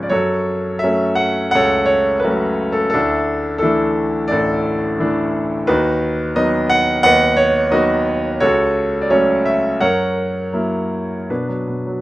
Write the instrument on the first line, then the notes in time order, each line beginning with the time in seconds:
grand piano
Already playing: G#1 F3 G#3 C#4 F4 G#4 C#5
0.03 D5
0.10 F#2 F#4 A4 C#5
0.79 F#3 E5
0.83 A3 C#4
1.15 F#5
1.51 C#2 A4 F#5
1.55 C#5
1.86 C#5
2.20 B4
2.24 F#3 A3 C#4 F#4
2.72 A4
2.90 E4 A4
2.94 D2 D4
3.58 E3 A4
3.62 A3 D4 E4
4.28 A1 D5
4.32 A4
4.99 E3 A3 D4
5.67 D#2 D#4 F#4 B4
6.36 F#3 B3 D#4 D#5
6.70 F#5
7.03 D#2 B4 D#5 F#5
7.37 C#5
7.71 F#3 B3 D#4 F#4 B4 D#5
8.40 C#2 F#4 A4 C#5
9.01 D5
9.10 F#3 A3 C#4 C#5
9.46 E5
9.80 F#2 A#4 C#5 F#5
10.53 F#3 A#3 E4
11.29 B2 D4 B4
11.48 F#3
11.68 B2
11.87 F#3